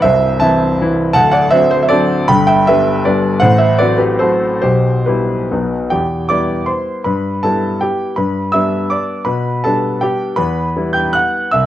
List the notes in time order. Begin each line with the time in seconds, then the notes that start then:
0.02 C1 C2 C5 E5
0.40 E3 C4 E4 E5 A5
0.81 E3 C4 E4
1.14 D1 D2 F#5 A5
1.32 D5 F#5
1.51 F#3 C4 D4 C5 E5
1.71 C5
1.83 E5
1.89 F#3 C4 D4 A4 D5
2.28 G1 G2 G5 B5
2.47 E5 G5
2.67 G3 B3 D4 B4 E5
3.05 G3 B3 D4 B4 D5
3.40 A1 A2 C5 F#5
3.58 C5 E5
3.78 F#3 C4 F#4 B4 D5
3.98 G4 B4
4.19 F#3 C4 F#4 A4 C5
4.62 B1 B2 G4 C5
5.06 G3 B3 E4 G4 B4
5.51 B1 B2 F#3 B3 D#4
5.90 E2 G4 G5
6.29 G3 B3 E4 D5 D6
6.66 C5 C6
7.04 G2 B4 B5
7.43 G3 B3 E4 A4 A5
7.81 G4 G5
8.17 G2 B4 B5
8.52 G3 B3 D4 E5 E6
8.90 D5 D6
9.25 B2 B4 B5
9.64 G3 B3 D4 A4 A5
10.01 G4 G5
10.36 E2 B4 B5
10.76 G3 B3 E4
10.93 G5 G6
11.13 F#5 F#6
11.51 C2 E5 E6